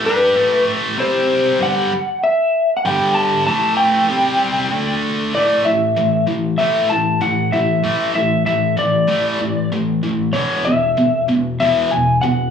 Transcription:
0.04 0.35 G3 medium
0.04 0.35 D4 medium
0.04 0.35 G4 medium
0.04 0.64 B4 medium
0.35 0.97 A2 medium
0.35 0.97 E3 medium
0.35 0.98 A3 medium
0.98 1.59 C3 medium
0.98 1.59 G3 loud
0.98 1.60 C4 loud
0.98 1.57 C5 medium
1.59 1.90 G2 medium
1.59 1.90 D3 medium
1.59 1.91 G3 loud
1.59 2.23 F#5 loud
2.23 2.76 E5 medium
2.77 2.84 F#5 medium
2.85 3.47 G2 medium
2.85 3.47 D3 loud
2.85 3.47 G3 medium
2.85 3.14 G5 loud
3.14 3.45 A5 medium
3.47 4.09 A2 medium
3.47 4.09 E3 medium
3.47 4.09 A3 loud
3.47 3.76 A5 loud
3.77 4.99 G5 medium
4.09 4.71 C3 medium
4.09 4.72 G3 medium
4.09 4.73 C4 loud
4.71 5.33 D3 medium
4.71 5.34 A3 medium
4.71 5.34 D4 loud
5.34 5.64 A2 medium
5.34 5.64 E3 medium
5.34 5.65 A3 medium
5.34 5.64 D5 medium
5.65 5.94 A2 medium
5.65 5.94 E3 medium
5.65 6.24 E5 medium
5.97 6.25 A2 medium
5.97 6.25 E3 medium
6.27 6.56 A2 medium
6.27 6.56 E3 medium
6.58 6.89 A2 medium
6.58 6.89 E3 medium
6.58 6.89 A3 medium
6.58 6.91 E5 medium
6.90 7.19 A2 medium
6.90 7.19 E3 medium
6.90 7.23 A5 medium
7.21 7.50 A2 medium
7.21 7.50 E3 medium
7.21 7.54 F#5 medium
7.52 7.82 A2 medium
7.52 7.82 E3 medium
7.52 8.14 E5 medium
7.84 8.14 A2 medium
7.84 8.14 E3 medium
7.84 8.14 A3 medium
8.15 8.44 A2 medium
8.15 8.44 E3 medium
8.15 8.45 E5 medium
8.46 8.75 A2 medium
8.46 8.75 E3 medium
8.46 8.78 E5 medium
8.77 9.06 A2 medium
8.77 9.06 E3 medium
8.77 9.69 D5 medium
9.08 9.38 A2 medium
9.08 9.39 E3 medium
9.08 9.39 A3 medium
9.40 9.69 A2 medium
9.40 9.69 E3 medium
9.72 10.00 A2 medium
9.72 10.00 E3 medium
10.03 10.32 A2 medium
10.03 10.32 E3 medium
10.33 10.64 E2 medium
10.33 10.64 B2 medium
10.33 10.65 E3 medium
10.33 10.66 C#5 medium
10.65 10.95 E2 medium
10.65 10.95 B2 medium
10.65 11.24 E5 medium
10.97 11.26 E2 medium
10.97 11.26 B2 medium
11.28 11.57 E2 medium
11.28 11.57 B2 medium
11.60 11.89 E2 medium
11.60 11.90 B2 medium
11.60 11.90 E3 medium
11.60 11.92 E5 medium
11.91 12.20 E2 medium
11.91 12.20 B2 medium
11.91 12.20 G#5 medium
12.21 12.51 E2 medium
12.21 12.51 B2 medium
12.21 12.51 F#5 medium

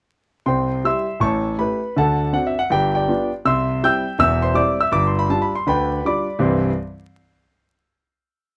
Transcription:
0.46 0.78 C2 medium
0.46 0.78 C3 medium
0.46 0.82 C5 medium
0.46 0.82 G5 medium
0.46 0.84 C6 medium
0.84 1.05 G3 soft
0.84 1.05 E4 soft
0.84 1.05 G4 soft
0.84 1.20 E5 medium
0.84 1.20 C6 medium
0.84 1.22 E6 medium
1.20 1.52 A1 medium
1.20 1.53 A2 medium
1.20 1.57 C#5 medium
1.20 1.57 A5 medium
1.20 1.58 C#6 medium
1.58 1.79 A3 soft
1.58 1.79 E4 soft
1.58 1.79 G4 soft
1.58 1.94 B4 medium
1.58 1.96 B5 medium
1.96 2.28 D2 medium
1.96 2.28 D3 medium
1.96 2.32 A4 medium
1.96 2.31 F#5 medium
1.96 2.34 A5 medium
2.33 2.53 C4 soft
2.33 2.53 D4 soft
2.33 2.54 F#4 soft
2.33 2.46 F#5 medium
2.47 2.58 E5 medium
2.59 2.71 F#5 medium
2.70 3.02 G1 medium
2.70 3.02 G2 medium
2.70 2.94 G4 medium
2.70 2.93 G5 medium
2.95 3.29 G4 soft
2.95 3.30 D5 medium
2.95 3.32 G5 medium
3.08 3.28 B3 soft
3.08 3.29 D4 soft
3.08 3.29 F4 soft
3.45 3.77 C2 medium
3.45 3.76 C3 medium
3.45 3.80 E5 medium
3.45 3.81 C6 medium
3.45 3.82 E6 medium
3.83 4.03 G3 soft
3.83 4.04 C4 soft
3.83 4.03 E4 soft
3.83 4.18 G5 medium
3.83 4.18 E6 medium
3.83 4.20 G6 medium
4.19 4.50 E1 medium
4.19 4.50 E2 medium
4.19 4.42 E5 medium
4.19 4.43 E6 loud
4.42 4.56 C5 medium
4.42 4.56 C6 medium
4.54 4.75 G3 soft
4.54 4.76 C4 soft
4.54 4.76 E4 soft
4.54 4.78 D5 medium
4.54 4.79 D6 medium
4.81 4.94 E5 medium
4.81 4.94 E6 medium
4.92 5.24 G1 medium
4.92 5.24 G2 medium
4.92 5.05 D6 medium
5.07 5.19 C6 medium
5.19 5.31 B5 medium
5.29 5.50 G3 soft
5.29 5.50 D4 soft
5.29 5.50 F4 soft
5.29 5.43 A5 medium
5.42 5.55 B5 medium
5.55 5.68 C6 medium
5.67 5.99 D2 medium
5.67 5.98 D3 medium
5.67 6.02 B4 medium
5.67 6.03 G5 medium
5.67 6.05 B5 medium
6.05 6.25 G3 soft
6.05 6.26 D4 soft
6.05 6.26 F4 soft
6.05 6.40 D5 soft
6.05 6.40 B5 medium
6.05 6.42 D6 medium
6.39 6.65 C2 medium
6.39 6.65 G2 medium
6.39 6.65 E3 medium
6.39 6.65 G3 medium
6.39 6.65 C4 medium
6.39 6.65 E4 medium
6.39 6.66 C6 soft

